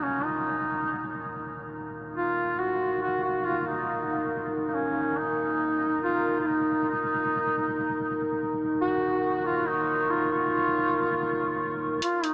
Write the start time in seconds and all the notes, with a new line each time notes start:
Already playing: D#1 D#4 A#4 A#5
0.02 C#4
0.24 D#4
1.74 F5
2.17 F4
2.59 F#4
3.02 F#4
3.24 F#4
3.45 F4
3.67 D#4
4.68 D#4
4.74 C#4
5.17 D#1 D#4 A#5
6.03 F4
6.40 F4
6.46 D#4
6.88 D#4
8.60 C#6
8.82 F#4
9.46 F4
9.67 D#4
10.10 F4
10.31 F4
12.02 A#3 D#4 F4 D#5, closed hi-hat
12.24 D#4, closed hi-hat